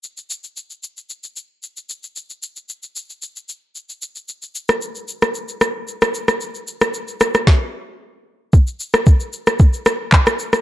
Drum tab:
SH |xxxxxxxxxxx-xxxx|xxxxxxxxxxx-xxxx|xxxxxxxxxxx-xxxx|xxxxxxxx--------|
CP |----------------|----------------|----------------|----------------|
SD |----------------|----------------|---r---r--r--r-r|---r--rro-------|
BD |----------------|----------------|----------------|--------o-------|

SH |xxxxxxxxxxx-xxxx|
CP |------------x---|
SD |---r---r--r--r-r|
BD |o---o---o---o---|